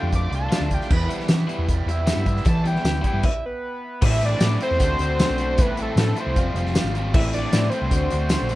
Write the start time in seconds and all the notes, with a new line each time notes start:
Already playing: D3 D4 F4 D5 G5 A5 D6
0.03 F2
0.11 A3, muted overdriven electric guitar stroke, kick, closed hi-hat
0.15 D6
0.30 C2 F4, muted overdriven electric guitar stroke, closed hi-hat
0.35 A5
0.49 D3 A3 D4 F4, snare, closed hi-hat, tambourine
0.60 D2
0.71 F4 G5, muted overdriven electric guitar stroke, kick, closed hi-hat
0.81 snare
0.90 E2 E4 B4 G5 B5, muted overdriven electric guitar stroke, kick, crash
1.09 E3 G3 B3 E4, closed hi-hat
1.20 snare
1.28 E3 B3, muted overdriven electric guitar stroke, snare, closed hi-hat, tambourine
1.48 E3 G3 B3 E4, closed hi-hat
1.58 E2
1.68 G3, muted overdriven electric guitar stroke, kick, closed hi-hat
1.86 E2 E4, muted overdriven electric guitar stroke, closed hi-hat
1.90 E5
2.06 E3 G3 B3 E4, snare, closed hi-hat, tambourine
2.16 G2
2.26 E4, muted overdriven electric guitar stroke, kick, closed hi-hat
2.36 snare
2.45 E2 E3 A5, muted overdriven electric guitar stroke, kick, closed hi-hat
2.64 E3 G3 B3 E4 G5, closed hi-hat
2.76 snare
2.84 D2 B3, muted overdriven electric guitar stroke, snare, closed hi-hat, tambourine
3.02 E3 G3 B3 E4, kick, closed hi-hat
3.07 G5
3.13 G2
3.23 E5, kick, crash
3.46 B4
4.02 A2 E3 A3 C4 E4 E5, kick, crash
4.21 A2 E3 A3 C4 E4, closed hi-hat
4.25 D5
4.40 A2 E3 A3 C4 E4, snare, closed hi-hat, tambourine
4.60 A2 E3 A3 C4 E4 C5, closed hi-hat
4.71 E2
4.79 D2 D3 A3 C4 D4 F#4, kick, closed hi-hat
4.99 D2 D3 A3 C4 D4 F#4, closed hi-hat
5.19 D3 A3 C4 D4 F#4, snare, closed hi-hat, tambourine
5.30 B1
5.38 D3 A3 C4 D4 F#4, closed hi-hat
5.58 A1 A2 E3 A3 C4 E4 B4, kick, closed hi-hat
5.77 A2 E3 A3 C4 E4, closed hi-hat
5.82 A4
5.96 A2 E3, snare, closed hi-hat, tambourine
6.00 A3 C4 E4 A4
6.16 A2 E3 A3 C4 E4 C5, closed hi-hat
6.26 C2
6.35 F1 F3 G3 C4 F4, kick, closed hi-hat
6.53 F1 F3 G3 C4 F4, closed hi-hat
6.66 snare
6.75 F3 G3 C4 F4, snare, closed hi-hat, tambourine
6.84 G#1
6.95 F3 G3 C4 F4, closed hi-hat
7.14 A1 A2 E3 A3 C4 E4 E5, kick, crash
7.33 A2 E3 A3 C4 E4 D5, closed hi-hat
7.52 A2 E3 A3 C4 E4, snare, closed hi-hat, tambourine
7.70 A2 E3 C5, closed hi-hat
7.74 A3 C4 E4
7.81 C2
7.91 D2 D3 A3 C4 D4 F#4, kick, closed hi-hat
8.11 D2 D3 A3 C4 D4 F#4, closed hi-hat
8.29 D3 A3 C4 D4 F#4, snare, closed hi-hat, tambourine
8.41 A#1
8.49 D3 A3 C4 D4 F#4, closed hi-hat